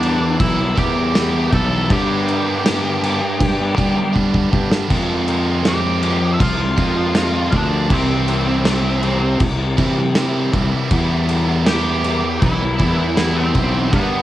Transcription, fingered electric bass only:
0.00 0.36 E2 loud
0.40 0.74 B1 loud
0.77 1.48 E2 medium
1.52 1.87 B1 loud
1.90 3.36 G2 loud
3.40 3.75 G2 loud
3.78 4.49 G3 loud
4.53 4.70 G2 medium
4.90 6.36 F2 loud
6.40 6.75 C2 loud
6.78 7.49 F2 medium
7.53 7.88 D2 loud
7.90 9.37 C2 loud
9.40 9.75 C2 loud
9.78 10.49 C3 loud
10.54 10.71 C2 medium
10.91 12.38 E2 loud
12.42 12.77 B1 loud
12.80 13.51 E2 loud
13.55 13.90 B1 loud
13.93 14.22 G2 loud

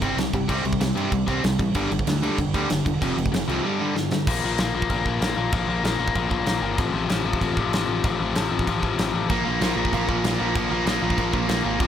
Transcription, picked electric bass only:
0.02 0.12 G1 medium
0.17 0.28 C2 medium
0.33 0.44 G1 medium
0.49 0.60 C2 loud
0.64 0.75 C2 medium
0.80 0.91 C2 medium
0.97 1.07 G2 medium
1.12 1.22 C2 medium
1.28 1.39 C2 medium
1.44 1.54 C2 medium
1.59 1.70 A1 medium
1.75 1.86 G1 loud
1.92 2.02 G1 medium
2.07 2.28 D2 loud
2.38 2.49 F1 medium
2.54 2.65 D2 loud
2.71 2.81 G1 medium
2.86 2.96 E1 medium
3.02 3.12 F1 loud
3.17 3.28 F1 loud
3.33 3.43 F1 loud
3.49 3.59 C2 medium
4.27 4.39 A#1 loud
4.44 4.55 A#1 medium
4.59 4.71 A#1 loud
4.74 4.86 A#1 medium
4.90 5.02 A#1 medium
5.05 5.18 A#1 medium
5.21 5.33 A#1 loud
5.37 5.49 A#1 medium
5.53 5.65 A#1 loud
5.68 5.80 A#1 loud
5.83 5.96 A#1 medium
5.99 6.12 A#1 medium
6.16 6.28 A#1 medium
6.31 6.43 A#1 medium
6.47 6.59 A#1 medium
6.62 6.74 G1 loud
6.79 6.91 A1 loud
6.94 7.06 A1 loud
7.10 7.22 A1 loud
7.25 7.37 A1 medium
7.41 7.53 A1 loud
7.57 7.69 A1 medium
7.72 7.85 A1 medium
7.88 8.00 A1 medium
8.04 8.16 A1 loud
8.20 8.32 A1 medium
8.37 8.48 A1 loud
8.52 8.64 A1 medium
8.68 8.80 A1 medium
8.82 8.95 A1 medium
8.99 9.11 A1 loud
9.14 9.26 A1 medium
9.30 9.42 A#1 loud
9.46 9.58 A#1 medium
9.61 9.73 A#1 medium
9.76 9.88 A#1 medium
9.93 10.05 A#1 medium
10.08 10.20 A#1 medium
10.24 10.36 A#1 medium
10.40 10.52 A#1 loud
10.56 10.68 A#1 loud
10.71 10.83 A#1 loud
10.86 10.98 A#1 loud
11.03 11.15 A#1 medium
11.18 11.30 A#1 medium
11.33 11.45 A#1 loud
11.49 11.61 A#1 loud
11.65 11.77 G#1 medium
11.80 11.87 A1 loud

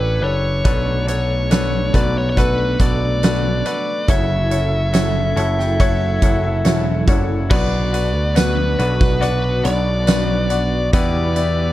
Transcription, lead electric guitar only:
0.00 0.24 B4 medium
0.24 1.05 C#5 medium
1.09 1.96 C#5 medium
1.96 2.17 D5 medium
2.18 2.28 C#5 medium
2.30 2.37 C#5 medium
2.39 2.78 B4 medium
2.81 3.66 D5 medium
3.67 4.10 D5 medium
4.10 7.05 E5 medium
7.51 8.37 D5 medium
8.37 9.22 B4 medium
9.23 9.65 B4 medium
9.65 10.90 D5 medium
10.94 11.73 D5 medium

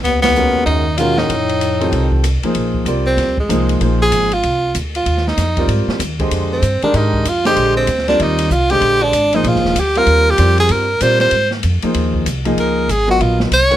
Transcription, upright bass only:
0.03 0.51 C#2 medium
0.55 muted upright bass stroke soft
0.66 1.26 D#2 medium
1.29 1.89 F2 medium
1.92 2.40 C2 medium
2.43 muted upright bass stroke soft
2.55 2.85 A#1 medium
2.85 3.16 C2 medium
3.17 3.48 D2 medium
3.49 3.80 C2 medium
3.81 4.11 A#1 medium
4.12 4.42 G#1 medium
4.44 4.74 C2 medium
4.75 5.05 D2 medium
5.06 5.36 D#2 medium
5.37 5.67 F2 medium
5.68 5.86 G#2 medium
5.88 muted upright bass stroke soft
5.99 6.30 D#2 medium
6.31 6.62 F2 medium
6.62 6.81 G2 medium
6.83 muted upright bass stroke soft
6.94 7.24 G#2 medium
7.25 7.55 F2 medium
7.56 7.87 A#1 medium
7.88 8.18 D2 medium
8.20 8.49 D#2 loud
8.50 8.80 C2 medium
8.81 9.12 A#1 medium
9.13 9.43 G#1 medium
9.44 9.54 A#1 medium
9.54 9.64 G1 medium
9.65 9.75 D#1 medium
9.75 10.06 D2 medium
10.07 10.37 D#2 medium
10.39 10.69 F2 loud
10.69 11.00 G2 loud
11.01 11.31 A#2 medium
11.32 11.62 G#2 medium
11.64 11.82 F2 medium
11.84 muted upright bass stroke soft
11.95 12.25 D#2 medium
12.26 12.56 C2 medium
12.57 12.87 C#2 medium
12.88 13.19 G#1 medium
13.20 13.50 A#1 medium
13.51 13.77 C2 medium

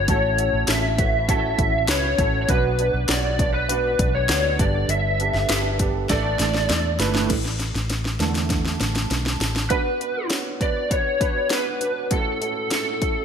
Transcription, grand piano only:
0.08 0.94 A2 medium
0.08 0.94 A3 medium
0.08 0.35 C#4 medium
0.08 0.35 E4 medium
0.08 0.35 F#4 medium
0.08 0.35 A4 loud
0.38 0.65 C#4 medium
0.38 0.65 E4 medium
0.38 0.65 F#4 medium
0.38 0.65 A4 medium
0.68 0.95 C#4 medium
0.68 0.95 E4 medium
0.68 0.95 F#4 medium
0.68 0.95 A4 medium
0.98 1.25 C#4 medium
0.98 1.25 E4 medium
0.98 1.25 F#4 medium
0.98 1.25 B4 medium
1.28 1.55 C#4 medium
1.28 1.55 E4 medium
1.28 1.55 F#4 medium
1.28 1.55 A4 loud
1.59 1.85 C#4 medium
1.59 1.85 E4 medium
1.59 1.85 F#4 medium
1.59 1.85 A4 medium
1.89 2.15 C#4 medium
1.89 2.15 E4 medium
1.89 2.15 F#4 medium
1.89 2.15 B4 medium
2.19 2.45 C#4 medium
2.19 2.45 E4 medium
2.19 2.46 F#4 medium
2.19 2.45 A4 medium
2.49 3.35 B2 medium
2.49 3.35 F#3 medium
2.49 2.75 B3 medium
2.49 2.75 D4 medium
2.49 2.75 F#4 medium
2.49 2.76 B4 medium
2.79 3.06 B3 medium
2.79 3.06 D4 medium
2.79 3.06 F#4 medium
2.79 3.06 D5 medium
3.09 3.36 B3 medium
3.09 3.36 D4 medium
3.09 3.36 F#4 medium
3.09 3.36 C#5 medium
3.39 3.66 B3 medium
3.39 3.66 D4 medium
3.39 3.66 F#4 medium
3.39 3.66 D5 medium
3.68 3.95 B3 loud
3.68 3.96 D4 medium
3.68 3.96 F#4 medium
3.68 3.96 B4 medium
3.99 4.26 B3 medium
3.99 4.26 D4 medium
3.99 4.26 F#4 medium
3.99 4.26 D5 medium
4.29 4.56 B3 medium
4.29 4.56 D4 medium
4.29 4.56 F#4 medium
4.29 4.56 D5 medium
4.59 5.46 G2 medium
4.59 5.45 D3 medium
4.59 5.12 B3 medium
4.59 5.12 D4 medium
4.59 5.12 G4 medium
4.59 5.12 A4 medium
5.20 5.46 B3 medium
5.20 5.46 D4 medium
5.20 5.46 G4 medium
5.20 5.46 A4 medium
5.49 5.76 B3 medium
5.49 5.76 D4 medium
5.49 5.76 G4 medium
5.49 5.76 A4 medium
5.79 6.06 B3 medium
5.79 6.06 D4 medium
5.79 6.06 G4 medium
5.79 6.06 A4 medium
6.09 6.96 A2 medium
6.09 6.96 E3 medium
6.09 6.36 A3 medium
6.09 6.36 D4 medium
6.09 6.36 E4 medium
6.09 6.36 A4 loud
6.40 6.66 A3 medium
6.40 6.66 D4 medium
6.40 6.66 E4 medium
6.40 6.66 A4 medium
6.69 6.96 A3 medium
6.69 6.96 D4 medium
6.69 6.96 E4 medium
6.69 6.96 A4 medium
6.99 7.26 A3 medium
6.99 7.26 D4 medium
6.99 7.26 E4 medium
6.99 7.26 B4 medium
8.19 8.60 D3 soft
8.19 8.60 E3 soft
8.19 8.60 A3 medium
9.70 9.97 B3 medium
9.70 9.97 D4 medium
9.70 9.97 F#4 medium
9.70 9.97 B4 medium
10.00 10.27 B3 medium
10.00 10.27 D4 medium
10.00 10.27 F#4 soft
10.00 10.27 B4 medium
10.30 10.57 B3 medium
10.30 10.57 D4 medium
10.30 10.57 F#4 medium
10.30 10.57 C#5 medium
10.60 10.87 B3 medium
10.60 10.88 D4 medium
10.60 10.87 F#4 soft
10.60 10.88 B4 medium
10.90 11.17 B3 medium
10.90 11.17 D4 medium
10.90 11.17 F#4 medium
10.90 11.17 B4 medium
11.20 11.47 B3 medium
11.20 11.47 D4 medium
11.20 11.47 F#4 medium
11.20 11.48 B4 medium
11.50 11.77 B3 medium
11.50 11.77 D4 medium
11.50 11.77 F#4 medium
11.50 11.77 B4 medium
11.80 12.07 B3 medium
11.80 12.07 D4 medium
11.80 12.08 F#4 medium
11.80 12.08 B4 medium
12.10 12.97 A2 soft
12.10 12.38 C#4 medium
12.10 12.38 E4 medium
12.10 12.38 F#4 medium
12.10 12.38 A4 medium
12.41 12.68 C#4 medium
12.41 12.68 E4 medium
12.41 12.68 F#4 medium
12.41 12.68 A4 medium
12.71 12.98 C#4 medium
12.71 12.98 E4 soft
12.71 12.98 F#4 soft
12.71 12.98 A4 medium
13.01 13.25 C#4 medium
13.01 13.25 E4 medium
13.01 13.25 F#4 medium
13.01 13.25 A4 medium

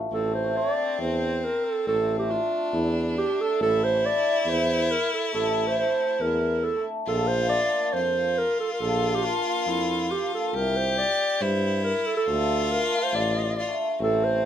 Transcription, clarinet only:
0.13 0.32 A4 medium
0.35 0.58 C5 medium
0.57 0.99 D5 medium
1.02 1.45 C5 medium
1.44 1.66 A#4 medium
1.65 1.86 A4 medium
1.88 2.17 A4 loud
2.19 2.32 G4 medium
2.31 2.77 F4 medium
2.75 3.17 E4 medium
3.18 3.42 G4 medium
3.41 3.61 A4 medium
3.62 3.85 A4 loud
3.84 4.07 C5 medium
4.06 4.41 D5 loud
4.41 4.51 D5 medium
4.49 4.92 C5 medium
4.91 5.12 A#4 medium
5.14 5.33 A4 medium
5.34 5.69 A4 medium
5.67 5.78 C5 medium
5.79 6.23 C5 medium
6.21 6.65 A#4 medium
6.64 6.86 A4 medium
7.08 7.29 A4 medium
7.28 7.49 C5 medium
7.49 7.95 D5 medium
7.93 8.39 C5 medium
8.38 8.59 A#4 medium
8.60 8.72 A4 medium
8.73 8.82 A#4 medium
8.80 9.16 A4 medium
9.14 9.26 G4 medium
9.24 9.70 F4 medium
9.69 10.13 E4 medium
10.11 10.33 G4 medium
10.34 10.58 A4 medium
10.57 10.78 A#4 medium
10.77 11.00 C5 medium
10.98 11.43 D5 medium
11.42 11.83 C5 medium
11.84 12.08 A#4 medium
12.06 12.16 A4 medium
12.17 12.73 A4 medium
12.72 13.05 A#4 medium
13.03 13.16 C5 medium
13.15 13.79 D5 medium
14.03 14.25 A4 medium
14.24 14.45 C5 medium

